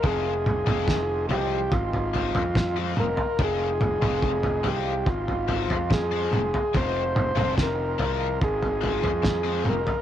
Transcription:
<<
  \new Staff \with { instrumentName = "Tonewheel organ" } { \time 4/4 \key f \minor \tempo 4 = 72 <ees'' f'' c'''>1~ | <ees'' f'' c'''>1~ | <ees'' f'' c'''>1 | }
  \new Staff \with { instrumentName = "Transistor combo organ" } { \time 4/4 \key f \minor aes'4. g'8 f'4 f'8 bes'8 | aes'4. g'8 f'4 aes'4 | c''4 bes'4 aes'4. bes'8 | }
  \new Staff \with { instrumentName = "Overdriven electric guitar" } { \time 4/4 \key f \minor <f aes c' f'>16 r8 <f aes c' f'>16 r8 <f aes c' f'>16 r8. <f aes c' f'>16 r8 <f aes c' f'>16 r8 | <f aes c' f'>16 r8 <f aes c' f'>16 r8 <f aes c' f'>16 r8. <f aes c' f'>16 r8 <f aes c' f'>16 r8 | <f aes c' f'>16 r8 <f aes c' f'>16 r8 <f aes c' f'>16 r8. <f aes c' f'>16 r8 <f aes c' f'>16 r8 | }
  \new Staff \with { instrumentName = "Fingered electric bass" } { \clef bass \time 4/4 \key f \minor f,,8. f,,8. c,8 aes,,8. f,8. f,,16 r16 | f,,8. f,,8. c,8 aes,,8. f,8. f,,16 r16 | f,,8. f,,8. c,8 aes,,8. f,8. f,,16 r16 | }
  \new DrumStaff \with { instrumentName = "Drums" } \drummode { \time 4/4 <bd tomfh>8 <tomfh toml>16 <tomfh toml>16 <bd sn>8 tomfh8 <bd tomfh>16 tomfh16 tomfh16 tomfh16 <bd sn toml>8 toml16 tomfh16 | <bd tomfh>8 <tomfh toml>16 <tomfh toml>16 bd16 tomfh16 tomfh8 <bd tomfh>16 tomfh16 tomfh16 tomfh16 <bd sn toml>8 toml16 tomfh16 | <bd tomfh>8 <tomfh toml>16 <tomfh toml>16 <bd sn>8 tomfh8 <bd tomfh>16 tomfh16 tomfh16 tomfh16 <bd sn toml>8 toml16 tomfh16 | }
>>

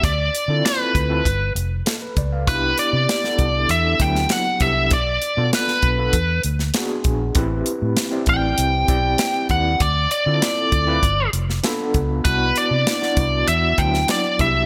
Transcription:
<<
  \new Staff \with { instrumentName = "Lead electric guitar" } { \time 4/4 \key c \lydian \tempo 4 = 98 d''4 b'4. r4. | b'8 d''4. e''8 g''8 fis''8 e''8 | d''4 b'4. r4. | r4. g''2 fis''8 |
d''8 d''2 r4. | b'8 d''4. e''8 g''8 d''8 e''8 | }
  \new Staff \with { instrumentName = "Tine electric piano" } { \time 4/4 \key c \lydian << { r2. a'16 b'16 d''16 f''16~ | f''16 r2. r8. | r1 | r1 |
r2. b''4 | r1 | } \\ { r8. <c' e' f' a'>8. r16 <c' e' f' a'>16 r2 | <b d' e' fis' g'>8. r8 <b d' e' a'>8. r8 <fis b d' e'>8. r16 <b d' e' g'>8 | r8. <b d' f' a'>8. r16 <b d' f' a'>16 r4 <b d' fis' gis'>8. r16 | <c' e' g' b'>8. r8 <c' e' g' d''>8. r8 <c' e' g' d''>8. r16 <c' e' g' b'>8 |
r8. <c' e' f' a'>8. r16 <c' e' f' b'>16 r4 <b d' f' a'>8. r16 | <b d' e' fis'>8. r8 <b d' e' fis'>8. r8 <fis b d' e'>8. r16 <b d' e' g'>8 | } >> }
  \new Staff \with { instrumentName = "Fingered electric bass" } { \clef bass \time 4/4 \key c \lydian d,8 r16 d16 r8 d,8 g,,8 f,,8 r8 cis,8 | c,8 r16 c16 r8 c,8 e,8 d,8 r8 c,8 | b,,8 r16 b,16 r8 b,,8 e,8 d,8 r8 ais,,8 | a,,8 r16 a,16 r8 a,,8 c,8 b,,8 r8 dis,8 |
d,8 r16 d16 r8 d,8 g,,8 f,,8 r8 cis,8 | c,8 r16 c16 r8 c,8 e,8 d,8 r8 c,8 | }
  \new DrumStaff \with { instrumentName = "Drums" } \drummode { \time 4/4 <hh bd>8 hh8 <hh sn>8 <hh bd>8 <hh bd>8 hh8 <hh sn>8 <hh bd>8 | <hh bd>8 hh8 <hh sn>16 sn16 <hh bd>8 hh8 <hh bd>16 sn16 <hh sn>8 <hh bd>8 | <hh bd>8 hh8 <hh sn>16 sn16 <hh bd>8 <hh bd>8 hh16 sn16 <hh sn>8 <hh bd>8 | <hh bd>8 hh8 <hh sn>8 <hh bd>8 hh8 <hh bd>8 <hh sn>8 <hh bd>8 |
<hh bd>8 hh8 <hh sn>8 <hh bd>8 <hh bd>8 hh16 sn16 <hh sn>8 <hh bd>8 | <hh bd>8 hh8 <hh sn>16 sn16 <hh bd>8 hh8 <hh bd>16 sn16 <hh sn>8 <hh bd>8 | }
>>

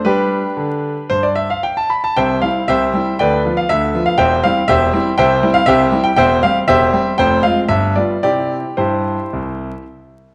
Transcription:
<<
  \new Staff \with { instrumentName = "Grand piano" } { \time 4/4 \key c \major \tempo 4 = 118 <d' g' b'>2 c''16 d''16 e''16 f''16 g''16 a''16 b''16 a''16 | <c'' e'' g''>8 f''8 <g' c'' e''>4 <b' d'' g''>8. f''16 e''8. f''16 | <c'' e'' g''>8 f''8 <g' c'' e''>4 <c'' e'' g''>8. f''16 <g' c'' e''>8. g''16 | <c'' e'' g''>8 f''8 <g' c'' e''>4 <c'' g''>8 f''8 e''8 d''8 |
<g' d''>4 <e' g' c''>2 r4 | }
  \new Staff \with { instrumentName = "Grand piano" } { \clef bass \time 4/4 \key c \major g4 d4 g,4 r4 | <c, c>8 <g c' e'>8 <c, c>8 <g c' e'>8 <d, d>8 <f b f'>8 <d, d>8 <f b f'>8 | <e,, e,>8 <g c' e'>8 <e,, e,>8 <g c' e'>8 <c, c>8 <g c' e'>8 <c, c>8 <g c' e'>8 | <e,, e,>8 <g c' g'>8 <e,, e,>8 <g c' g'>8 <f,, f,>8 <aes c' f'>8 <g,, g,>8 <g b f'>8 |
<c c' e'>4 g,4 c,4 r4 | }
>>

